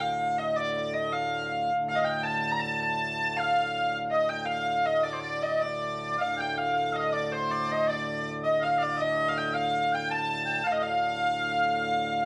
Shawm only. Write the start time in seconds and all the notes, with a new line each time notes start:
1.91 F5
2.01 F5
2.10 G5
2.27 A5
2.54 A#5
2.63 A5
2.83 A5
3.40 F5
4.14 D#5
4.32 G5
4.50 F5
4.69 F5
4.87 D#5
5.06 D5
5.13 C5
5.20 D5
5.64 D5
6.18 F5
6.37 G5
6.58 F5
6.74 F5
6.93 D#5
6.99 D#5 F5
7.13 D5
7.32 C5
7.88 D5
8.43 D#5
8.61 F5
8.78 D5
8.97 D#5
9.54 F5
9.93 G5
10.10 A5
10.45 G5
10.64 F5
10.79 F5